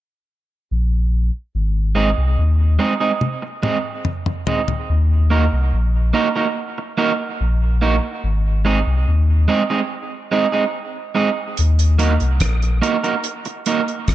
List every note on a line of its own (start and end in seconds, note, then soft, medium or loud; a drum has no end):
0.71 1.31 A#1 medium
1.55 2.14 G#1 medium
1.95 2.09 G#3 medium
1.95 2.09 C4 medium
1.95 2.09 D#4 medium
1.95 2.09 G#4 medium
2.18 2.37 C2 medium
2.39 2.78 D#2 medium
2.79 2.92 G#3 medium
2.79 2.93 C4 medium
2.79 2.93 D#4 medium
2.79 2.93 G#4 medium
3.00 3.11 G#3 medium
3.00 3.11 C4 medium
3.00 3.11 D#4 medium
3.00 3.11 G#4 medium
3.21 high tom medium
3.42 muted clean electric guitar stroke soft
3.63 3.76 G#3 medium
3.63 3.77 C4 medium
3.63 3.77 D#4 medium
3.63 3.77 G#4 medium
3.63 mid tom medium
4.05 mid tom medium
4.26 mid tom medium
4.47 4.60 G#3 medium
4.47 4.60 C4 medium
4.47 4.60 D#4 medium
4.47 4.61 G#4 medium
4.47 floor tom medium
4.68 floor tom medium
4.90 5.49 D#2 loud
5.30 5.44 A#3 medium
5.30 5.44 D#4 medium
5.30 5.44 F#4 medium
5.30 5.44 A#4 medium
5.53 5.72 C2 medium
5.74 6.13 A#1 loud
6.13 6.27 A#3 medium
6.13 6.27 D#4 medium
6.13 6.28 F#4 medium
6.13 6.28 A#4 loud
6.36 6.46 A#3 medium
6.36 6.46 D#4 medium
6.36 6.46 F#4 medium
6.36 6.45 A#4 medium
6.78 muted clean electric guitar stroke soft
6.98 7.11 A#3 medium
6.98 7.11 D#4 loud
6.98 7.11 F#4 loud
6.98 7.11 A#4 medium
7.41 8.00 A#1 medium
7.82 7.95 A#3 medium
7.82 7.95 D#4 medium
7.82 7.95 F#4 medium
7.82 7.95 A#4 medium
8.24 8.83 G#1 loud
8.65 8.78 G#3 medium
8.65 8.78 C4 medium
8.65 8.79 D#4 medium
8.65 8.79 G#4 medium
8.87 9.06 C2 medium
9.08 9.47 D#2 medium
9.48 9.61 G#3 medium
9.48 9.62 C4 medium
9.48 9.62 D#4 medium
9.48 9.62 G#4 medium
9.70 9.80 G#3 medium
9.70 9.80 C4 medium
9.70 9.80 D#4 medium
9.70 9.80 G#4 medium
10.31 10.45 G#3 medium
10.31 10.45 C4 medium
10.31 10.46 D#4 medium
10.31 10.46 G#4 medium
10.52 10.63 G#3 medium
10.52 10.64 C4 medium
10.52 10.63 D#4 medium
10.52 10.63 G#4 medium
11.15 11.28 G#3 medium
11.15 11.29 C4 medium
11.15 11.29 D#4 medium
11.15 11.29 G#4 medium
11.57 12.18 D#2 medium
11.57 closed hi-hat medium
11.79 closed hi-hat medium
11.99 12.12 A#3 medium
11.99 12.12 D#4 medium
11.99 12.13 F#4 medium
11.99 12.13 A#4 medium
11.99 closed hi-hat medium
12.20 12.40 C2 medium
12.20 closed hi-hat soft
12.40 12.81 A#1 loud
12.40 kick medium
12.40 cross-stick loud
12.40 closed hi-hat loud
12.62 closed hi-hat soft
12.82 12.95 A#3 medium
12.82 12.96 D#4 medium
12.82 12.96 F#4 medium
12.82 12.96 A#4 medium
12.82 closed hi-hat medium
13.04 13.15 A#3 medium
13.04 13.14 D#4 medium
13.04 13.14 F#4 medium
13.04 13.14 A#4 medium
13.04 closed hi-hat soft
13.24 closed hi-hat medium
13.45 muted clean electric guitar stroke soft
13.45 closed hi-hat soft
13.66 13.80 A#3 medium
13.66 13.80 D#4 loud
13.66 13.80 F#4 medium
13.66 13.80 A#4 medium
13.66 closed hi-hat loud
13.88 closed hi-hat soft
14.08 14.15 A#1 loud
14.08 kick loud
14.08 cross-stick loud
14.08 closed hi-hat medium